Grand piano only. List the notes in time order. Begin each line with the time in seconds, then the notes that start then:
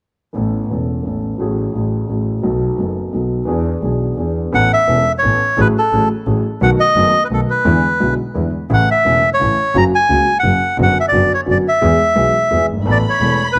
0.33 A1 A2 E3 B3 C#4 A4
0.68 E1 E2 E3 B3 C#4
0.73 A4
1.02 A1 A2 E3 B3 C#4
1.07 A4
1.38 A1 A2 F#3 A3 C#4
1.42 G#4
1.72 A1 A2 F#3 A3 C#4 G#4
2.06 A1 A2 F#3 A3 C#4 G#4
2.41 B1 B2 F#3 B3 D#4
2.46 A4
2.77 F#1 F#2 F#3 B3 D#4 A4
3.11 B1 B2 F#3 B3 D#4 A4
3.45 E2 E3 B3 D4 G#4
3.81 B1 B2 E3 B3 D4 G#4
4.16 E2 E3 B3 D4
4.20 G#4
4.52 A1 A2 E3 B3 C#4 A4
4.87 E1 E2 E3 B3 C#4 A4
5.23 A1 A2 E3 B3 C#4 A4
5.58 A1 A2 F#3 A3 C#4 G#4
5.92 A1 A2 F#3 A3 C#4 G#4
6.26 A1 A2 F#3 A3 C#4 G#4
6.61 B1 B2 D#3 A3 B3 F#4
6.96 F#1 F#2 D#3 A3 B3 F#4
7.31 B1 B2 D#3 A3 B3 F#4
7.65 E2 D3 E3 G#3 B3 E4
8.00 B1 B2 D3 G#3 B3 E4
8.34 E2 D3 E3 G#3 B3 E4
8.70 A1 A2 C#3 E3 A3 E4
9.05 E1 E2 C#3 E3 A3 E4
9.40 A1 A2 C#3 E3 A3 E4
9.75 F#2 C#3 F#3 A#3 F#4
10.09 C#2 C#3 F#3 A#3 F#4
10.43 F#2 C#3 F#3 A#3 F#4
10.78 F#2 D3 F#3 B3 F#4
11.12 F#2 D3 F#3 B3 F#4
11.46 F#2 D3 F#3 B3 F#4
11.81 E2 E3 G#3 B3 G#4
12.15 B1 B2 E3 G#3 B3 G#4
12.51 E2 E3 G#3 B3 G#4
12.73 F#1
12.78 G1
12.82 G#1 A2 E3 A3 B3 A4
12.86 A1
13.21 E1 E2 E3 A3 B3 A4
13.56 A3